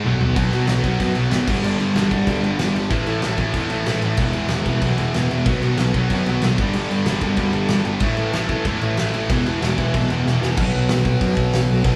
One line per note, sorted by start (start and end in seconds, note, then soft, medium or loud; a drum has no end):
0.04 0.34 B1 loud
0.04 0.34 B2 medium
0.04 0.35 F#3 loud
0.04 0.36 B3 loud
0.04 mid tom loud
0.21 floor tom loud
0.35 0.48 B1 medium
0.35 0.52 B2 medium
0.35 0.52 F#3 medium
0.35 0.53 B3 loud
0.35 0.82 D#4 loud
0.35 kick loud
0.35 crash medium
0.52 0.64 B2 medium
0.52 0.66 B2 medium
0.52 0.67 F#3 medium
0.52 0.68 B3 medium
0.52 crash medium
0.67 0.80 B1 medium
0.67 0.84 B2 medium
0.67 0.84 F#3 medium
0.67 0.84 B3 medium
0.67 snare loud
0.67 crash medium
0.83 0.95 B1 medium
0.83 0.98 B2 medium
0.83 0.99 F#3 loud
0.83 1.00 B3 loud
0.83 1.46 D#4 medium
0.83 kick medium
0.83 crash medium
0.99 1.12 F#2 medium
0.99 1.14 B2 medium
0.99 1.15 F#3 loud
0.99 1.14 B3 loud
0.99 kick medium
0.99 crash medium
1.15 1.28 B1 medium
1.15 1.29 B2 medium
1.15 1.30 F#3 medium
1.15 1.30 B3 medium
1.15 crash medium
1.30 1.44 G#1 medium
1.30 1.46 B2 medium
1.30 1.46 F#3 medium
1.30 1.46 B3 medium
1.30 snare loud
1.30 crash medium
1.47 1.59 G1 medium
1.47 1.64 G2 medium
1.47 1.63 D3 loud
1.47 1.62 G3 loud
1.47 1.95 B3 loud
1.47 1.95 D4 loud
1.47 kick loud
1.47 crash loud
1.63 1.75 G1 medium
1.63 1.78 G2 medium
1.63 1.79 D3 loud
1.63 1.81 G3 loud
1.63 crash medium
1.80 1.95 G2 medium
1.80 1.91 G2 medium
1.80 1.95 D3 medium
1.80 1.95 G3 loud
1.80 crash medium
1.95 2.07 G1 loud
1.95 2.10 G2 medium
1.95 2.11 D3 medium
1.95 2.11 G3 loud
1.95 2.75 B3 medium
1.95 2.75 D4 medium
1.95 snare loud
1.95 crash medium
2.11 2.23 G1 medium
2.11 2.28 G2 medium
2.11 2.27 D3 loud
2.11 2.27 G3 medium
2.11 kick medium
2.11 crash medium
2.27 2.39 D2 medium
2.27 2.42 G2 medium
2.27 2.42 D3 loud
2.27 2.44 G3 loud
2.27 kick loud
2.27 crash medium
2.43 2.55 G1 medium
2.43 2.59 G2 medium
2.43 2.59 D3 medium
2.43 2.58 G3 medium
2.43 crash medium
2.59 2.71 G1 loud
2.59 2.73 G2 medium
2.59 2.74 D3 medium
2.59 2.75 G3 loud
2.59 snare loud
2.59 crash medium
2.74 2.91 G1 medium
2.74 2.90 G2 medium
2.74 2.90 D3 medium
2.74 2.90 G3 medium
2.74 crash medium
2.90 3.03 A1 loud
2.90 3.07 A2 loud
2.90 3.07 E3 loud
2.90 3.06 A3 loud
2.90 3.38 C#4 loud
2.90 3.37 E4 loud
2.90 kick loud
2.90 crash medium
3.06 3.18 A2 medium
3.06 3.21 A2 medium
3.06 3.23 E3 medium
3.06 3.23 A3 medium
3.06 crash medium
3.22 3.35 A1 medium
3.22 3.39 A2 medium
3.22 3.38 E3 medium
3.22 3.38 A3 loud
3.22 snare loud
3.22 crash medium
3.37 3.50 A1 medium
3.37 3.53 A2 medium
3.37 3.54 E3 medium
3.37 3.54 A3 medium
3.37 4.18 C#4 medium
3.37 4.17 E4 medium
3.37 kick medium
3.37 crash medium
3.53 3.66 E2 loud
3.53 3.70 A2 medium
3.53 3.70 E3 loud
3.53 3.69 A3 loud
3.53 kick medium
3.53 crash medium
3.70 3.82 A1 medium
3.70 3.87 A2 medium
3.70 3.87 E3 medium
3.70 3.88 A3 medium
3.70 crash medium
3.86 3.99 A1 loud
3.86 4.05 A2 medium
3.86 4.04 E3 medium
3.86 4.03 A3 medium
3.86 snare loud
3.86 crash medium
4.02 4.14 A1 loud
4.02 4.19 A2 medium
4.02 4.19 E3 medium
4.02 4.18 A3 medium
4.02 crash medium
4.17 4.30 E1 medium
4.17 4.36 E2 loud
4.17 4.36 B2 loud
4.17 4.35 E3 loud
4.17 4.66 G#3 medium
4.17 kick loud
4.17 crash medium
4.21 4.67 B3 loud
4.21 4.65 E4 loud
4.33 4.46 E2 medium
4.33 4.52 B2 medium
4.33 4.52 E3 medium
4.33 crash medium
4.37 4.51 E2 medium
4.48 4.62 E1 medium
4.48 4.68 E2 medium
4.48 snare loud
4.48 crash medium
4.53 4.67 B2 medium
4.53 4.66 E3 loud
4.65 4.78 E1 loud
4.65 4.80 E2 medium
4.65 4.82 B2 medium
4.65 4.82 E3 medium
4.65 5.46 G#3 medium
4.65 5.49 B3 medium
4.65 5.45 E4 medium
4.65 kick medium
4.65 crash medium
4.81 4.94 B1 medium
4.81 4.99 E2 medium
4.81 4.98 B2 loud
4.81 4.97 E3 medium
4.81 kick loud
4.81 crash medium
4.98 5.10 E1 medium
4.98 5.15 E2 medium
4.98 5.15 B2 medium
4.98 5.16 E3 medium
4.98 crash medium
5.14 5.27 E1 medium
5.14 5.32 E2 medium
5.14 5.31 B2 medium
5.14 5.31 E3 loud
5.14 snare loud
5.14 crash medium
5.30 5.43 E1 medium
5.30 5.47 E2 medium
5.30 5.46 B2 medium
5.30 5.46 E3 medium
5.30 crash medium
5.46 5.58 B1 loud
5.46 5.64 B2 medium
5.46 5.94 D#3 medium
5.46 5.63 F#3 loud
5.46 5.63 B3 loud
5.46 5.93 D#4 loud
5.46 kick loud
5.46 crash medium
5.61 5.74 B2 medium
5.61 5.79 F#3 medium
5.61 5.81 B3 medium
5.61 crash medium
5.65 5.79 B2 medium
5.77 5.90 B1 medium
5.77 5.96 B2 medium
5.77 5.96 F#3 medium
5.77 5.95 B3 loud
5.77 snare loud
5.77 crash medium
5.94 6.06 B1 loud
5.94 6.12 B2 medium
5.94 6.58 D#3 medium
5.94 6.12 F#3 medium
5.94 6.13 B3 medium
5.94 6.57 D#4 medium
5.94 kick medium
5.94 crash medium
6.10 6.22 F#2 medium
6.10 6.29 B2 loud
6.10 6.29 F#3 loud
6.10 kick medium
6.10 crash medium
6.14 6.28 B3 loud
6.26 6.38 B1 medium
6.26 6.44 B3 loud
6.26 crash medium
6.30 6.43 B2 medium
6.30 6.43 F#3 medium
6.42 6.55 B1 loud
6.42 6.58 B2 medium
6.42 6.59 F#3 medium
6.42 6.59 B3 loud
6.42 snare loud
6.42 crash medium
6.58 6.70 G1 medium
6.58 6.75 G2 medium
6.58 6.75 D3 loud
6.58 7.06 B3 loud
6.58 7.07 D4 loud
6.58 kick loud
6.58 crash medium
6.62 6.74 G3 loud
6.73 6.87 G1 loud
6.73 6.90 G2 medium
6.73 6.90 D3 loud
6.73 6.90 G3 loud
6.73 crash medium
6.90 7.02 G2 medium
6.90 7.07 G2 medium
6.90 7.06 D3 loud
6.90 7.05 G3 medium
6.90 crash medium
7.06 7.18 G1 loud
7.06 7.21 G2 medium
7.06 7.22 D3 medium
7.06 7.22 G3 medium
7.06 7.87 B3 medium
7.06 7.87 D4 medium
7.06 snare loud
7.06 crash medium
7.21 7.34 G1 medium
7.21 7.38 G2 medium
7.21 7.37 D3 medium
7.21 7.37 G3 loud
7.21 kick medium
7.21 crash medium
7.37 7.50 D2 medium
7.37 7.51 G2 medium
7.37 7.52 D3 loud
7.37 7.53 G3 loud
7.37 kick medium
7.37 crash medium
7.52 7.66 G1 medium
7.52 7.70 G2 medium
7.52 7.70 D3 medium
7.52 7.68 G3 loud
7.52 crash medium
7.68 7.82 G1 loud
7.68 7.84 G2 medium
7.68 7.85 D3 medium
7.68 7.85 G3 loud
7.68 snare loud
7.68 crash medium
7.85 7.98 G1 medium
7.85 8.01 G2 medium
7.85 8.01 D3 medium
7.85 8.01 G3 medium
7.85 crash medium
8.00 8.13 A1 loud
8.00 8.16 A2 loud
8.00 8.17 E3 loud
8.00 8.15 A3 loud
8.00 8.49 C#4 loud
8.00 8.48 E4 loud
8.00 kick loud
8.00 crash medium
8.17 8.31 A2 medium
8.17 8.30 A2 loud
8.17 8.33 E3 medium
8.17 8.32 A3 medium
8.17 crash medium
8.32 8.46 A1 medium
8.32 8.50 A2 medium
8.32 8.49 E3 medium
8.32 8.47 A3 loud
8.32 snare loud
8.32 crash medium
8.48 8.62 A1 medium
8.48 8.65 A2 medium
8.48 8.66 E3 medium
8.48 8.66 A3 loud
8.48 9.29 C#4 loud
8.48 9.28 E4 medium
8.48 kick medium
8.48 crash medium
8.65 8.77 E2 medium
8.65 8.82 A2 loud
8.65 8.81 E3 loud
8.65 8.80 A3 loud
8.65 kick medium
8.65 crash medium
8.81 8.94 A1 loud
8.81 8.97 A2 medium
8.81 8.98 E3 medium
8.81 8.98 A3 loud
8.81 crash medium
8.97 9.11 A1 medium
8.97 9.14 A2 medium
8.97 9.13 E3 loud
8.97 9.12 A3 loud
8.97 snare loud
8.97 crash medium
9.13 9.27 A1 medium
9.13 9.30 A2 medium
9.13 9.29 E3 medium
9.13 9.29 A3 medium
9.13 crash medium
9.30 9.42 E1 medium
9.30 9.47 E2 medium
9.30 9.46 B2 loud
9.30 9.46 E3 loud
9.30 9.77 G#3 loud
9.30 9.78 B3 loud
9.30 9.77 E4 loud
9.30 kick loud
9.30 crash medium
9.46 9.59 E2 medium
9.46 9.60 E2 medium
9.46 9.61 B2 medium
9.46 9.61 E3 medium
9.46 crash medium
9.62 9.74 E1 loud
9.62 9.78 E2 medium
9.62 9.77 B2 medium
9.62 9.76 E3 loud
9.62 snare loud
9.62 crash medium
9.78 9.90 E1 medium
9.78 9.92 E2 medium
9.78 9.93 B2 medium
9.78 9.94 E3 loud
9.78 10.58 G#3 medium
9.78 10.58 B3 medium
9.78 10.57 E4 medium
9.78 kick medium
9.78 crash medium
9.82 10.59 E3 medium
9.94 10.06 B1 medium
9.94 10.11 E2 medium
9.94 10.11 B2 loud
9.94 10.10 E3 loud
9.94 kick medium
9.94 crash medium
10.10 10.22 E1 medium
10.10 10.27 E2 medium
10.10 10.27 B2 medium
10.10 10.28 E3 medium
10.10 crash medium
10.25 10.38 E1 loud
10.25 10.44 E2 medium
10.25 10.44 B2 medium
10.25 10.43 E3 loud
10.25 snare medium
10.42 10.57 E1 medium
10.42 10.59 E2 medium
10.42 10.58 B2 medium
10.42 10.58 E3 medium
10.42 snare loud
10.57 10.70 B1 loud
10.57 11.84 B2 loud
10.57 kick loud
10.57 crash loud
10.63 11.87 F#3 loud
10.63 11.86 B3 loud
10.75 10.86 B1 loud
10.89 11.14 B1 medium
10.89 snare loud
10.89 open hi-hat medium
11.05 kick medium
11.21 11.33 F#2 medium
11.21 kick loud
11.21 open hi-hat medium
11.37 11.49 B1 medium
11.37 kick medium
11.53 11.65 B1 loud
11.53 snare loud
11.53 open hi-hat medium
11.69 11.81 B1 medium
11.84 11.96 B1 loud
11.84 11.96 B2 loud
11.84 11.96 F#3 loud
11.84 kick loud
11.84 open hi-hat medium
11.89 11.96 B3 loud